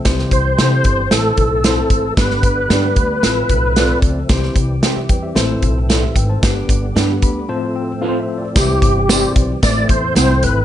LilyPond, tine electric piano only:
<<
  \new Staff \with { instrumentName = "Tine electric piano" } { \time 4/4 \key c \major \tempo 4 = 113 << { r1 | r1 | r4 r16 <g' e''>16 <b' g''>16 <g' e''>8 r8. d''16 <g' e''>16 <b' g''>16 <c'' a''>16~ | <c'' a''>16 r4 r16 b''8 a''8 g''8 \tuplet 3/2 { f''8 e''8 d''8 } |
r1 | } \\ { <c' ees' e' g' c''>4 <c' e' g' a'>4 <c' e' a' b' c''>4 <c' e' a' c''>4 | <b d' g' a' b'>4 <b d' g' d''>4 <c' f' a'>4 <c' f' aes' a' d''>4 | <c' ees' e' g' c''>4 r4 <c' e' a' c''>4 r4 | <b d' g' b'>4 <b d' g' b'>4 <c' f' a' c''>4 <c' f' a' b' c''>4 |
<c' e' g' c'' d'' e''>4 <c' ees' e' g' c'' d''>4 <c' e' a' b' c'' e''>4 <c' e' a' c'' fis'' g''>4 | } >> }
  \new Staff \with { instrumentName = "Tine electric piano" } { \clef bass \time 4/4 \key c \major c4. r8 a,4. r8 | g,4. r8 a,4. r8 | c4. r8 a,4. r8 | g,4. r8 a,4. r8 |
c4. r8 a,4. r8 | }
>>